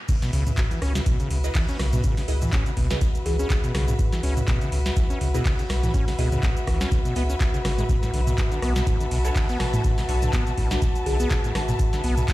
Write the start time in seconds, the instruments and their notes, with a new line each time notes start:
0.09 acid bass C#3, analog synth pad F#4 F#5, string section B4, kick, closed hi-hat, crash, shaker
0.17 string section E5
0.22 acid bass B2, snare, closed hi-hat, shaker
0.33 sub bass C#2, acid bass C#3, open hi-hat, shaker
0.47 acid bass C#3, closed hi-hat, mid tom, shaker
0.57 kick, snare, clap, closed hi-hat, shaker
0.71 acid bass E3, closed hi-hat, shaker
0.82 sub bass C#2, acid bass C#4, cross-stick, open hi-hat, shaker
0.95 acid bass C#3, snare, closed hi-hat, shaker
1.06 acid bass B2, kick, closed hi-hat, shaker
1.20 acid bass C#3, closed hi-hat, shaker
1.30 sub bass C#2, acid bass C#3, open hi-hat, shaker
1.44 synth stab E4 G#4 B4 D#5, snare, closed hi-hat, shaker
1.55 acid bass E3, kick, snare, clap, closed hi-hat, open hi-hat, shaker
1.69 acid bass C#4, closed hi-hat, shaker
1.79 sub bass B1, acid bass C#3, cross-stick, snare, open hi-hat, shaker
1.93 acid bass B2, closed hi-hat, mid tom, shaker
2.04 acid bass C#3, kick, closed hi-hat, shaker
2.17 acid bass C#3, snare, open hi-hat, shaker
2.28 sub bass C#2, synth stab E4 G#4 B4 D#5, open hi-hat, shaker
2.42 acid bass E3, closed hi-hat, mid tom, shaker
2.53 acid bass C#4, kick, snare, clap, closed hi-hat, shaker
2.66 acid bass C#3, closed hi-hat, shaker
2.77 sub bass C#2, acid bass B2, kick, open hi-hat, shaker
2.90 acid bass C#3, synth stab E4 G#4 B4 D#5, snare, closed hi-hat, shaker
3.01 acid bass C#3, kick, closed hi-hat, shaker
3.15 closed hi-hat, shaker
3.26 sub bass C#2, acid bass E3, kalimba G#4, open hi-hat, shaker
3.39 acid bass C#4, kalimba G#4, closed hi-hat, shaker
3.50 acid bass C#3, kick, snare, clap, closed hi-hat, shaker
3.64 acid bass B2, closed hi-hat, shaker
3.75 sub bass B1, acid bass C#3, cross-stick, snare, open hi-hat, shaker
3.88 acid bass C#3, closed hi-hat, mid tom, shaker
3.99 kick, closed hi-hat, shaker
4.12 acid bass E3, snare, closed hi-hat, shaker
4.23 sub bass C#2, acid bass C#4, open hi-hat, shaker
4.37 acid bass C#3, closed hi-hat, mid tom, shaker
4.47 acid bass B2, kick, snare, clap, closed hi-hat, shaker
4.61 acid bass C#3, closed hi-hat, shaker
4.72 sub bass C#2, acid bass C#3, open hi-hat, shaker
4.86 snare, closed hi-hat, shaker
4.96 acid bass E3, kick, closed hi-hat, shaker
5.10 acid bass C#4, closed hi-hat, shaker
5.21 sub bass C#2, acid bass C#3, open hi-hat, shaker
5.34 acid bass B2, synth stab E4 G#4 B4 D#5, snare, closed hi-hat, shaker
5.45 acid bass C#3, kick, snare, clap, closed hi-hat, open hi-hat, shaker
5.59 acid bass C#3, closed hi-hat, shaker
5.69 sub bass B1, cross-stick, snare, open hi-hat, shaker
5.83 acid bass E3, closed hi-hat, mid tom, shaker
5.94 acid bass C#4, kick, closed hi-hat, shaker
6.08 acid bass C#3, snare, open hi-hat, shaker
6.18 sub bass C#2, acid bass B2, synth stab E4 G#4 B4 D#5, open hi-hat, shaker
6.32 acid bass C#3, closed hi-hat, mid tom, shaker
6.43 acid bass C#3, kick, snare, clap, closed hi-hat, shaker
6.57 closed hi-hat, shaker
6.67 sub bass C#2, acid bass E3, kick, cross-stick, open hi-hat, shaker
6.81 acid bass C#4, snare, closed hi-hat, shaker
6.91 acid bass C#3, kick, closed hi-hat, shaker
7.05 acid bass B2, closed hi-hat, shaker
7.16 sub bass C#2, acid bass B3, synth stab E4 G#4 B4 D#5, open hi-hat, shaker
7.30 acid bass C#4, closed hi-hat, shaker
7.40 kick, snare, clap, closed hi-hat, shaker
7.54 acid bass C#3, closed hi-hat, shaker
7.65 sub bass G#1, acid bass C#3, cross-stick, snare, open hi-hat, shaker
7.78 acid bass G#3, closed hi-hat, mid tom, shaker
7.89 acid bass B2, kick, closed hi-hat, shaker
8.03 acid bass A2, snare, closed hi-hat, shaker
8.14 sub bass B1, acid bass D3, open hi-hat, shaker
8.27 acid bass B2, closed hi-hat, mid tom, shaker
8.38 string section A5, kick, snare, clap, closed hi-hat, shaker
8.52 acid bass D3, closed hi-hat, shaker
8.62 sub bass B1, acid bass B3, cross-stick, open hi-hat, shaker
8.76 acid bass B2, snare, closed hi-hat, shaker
8.87 acid bass A2, kick, closed hi-hat, shaker
9.00 acid bass D3, closed hi-hat, shaker
9.11 sub bass B1, acid bass B2, open hi-hat, shaker
9.25 synth stab D4 F#4 A4 C#5, snare, closed hi-hat, shaker
9.35 acid bass D3, kick, snare, clap, closed hi-hat, open hi-hat, shaker
9.49 acid bass B3, closed hi-hat, shaker
9.60 sub bass A1, acid bass B2, cross-stick, snare, open hi-hat, shaker
9.74 acid bass A2, closed hi-hat, mid tom, shaker
9.84 acid bass D3, kick, closed hi-hat, shaker
9.98 acid bass B2, snare, open hi-hat, shaker
10.09 sub bass B1, synth stab D4 F#4 A4 C#5, open hi-hat, shaker
10.22 acid bass D3, closed hi-hat, mid tom, shaker
10.33 acid bass B3, kick, snare, clap, closed hi-hat, shaker
10.47 acid bass B2, closed hi-hat, shaker
10.58 sub bass B1, acid bass A2, kick, open hi-hat, shaker
10.71 acid bass D3, synth stab D4 F#4 A4 B4, snare, closed hi-hat, shaker
10.82 acid bass B2, kick, closed hi-hat, shaker
10.95 closed hi-hat, shaker
11.06 sub bass B1, acid bass D3, kalimba G#4, open hi-hat, shaker
11.20 acid bass B3, kalimba G#4, closed hi-hat, shaker
11.31 acid bass B2, kick, snare, clap, closed hi-hat, shaker
11.44 acid bass A2, closed hi-hat, shaker
11.55 sub bass A1, acid bass D3, cross-stick, snare, open hi-hat, shaker
11.69 acid bass B2, closed hi-hat, mid tom, shaker
11.79 kick, closed hi-hat, shaker
11.93 acid bass D3, snare, closed hi-hat, shaker
12.04 sub bass B1, acid bass B3, open hi-hat, shaker
12.17 acid bass B2, closed hi-hat, mid tom, shaker
12.28 acid bass A2, kick, snare, clap, closed hi-hat, shaker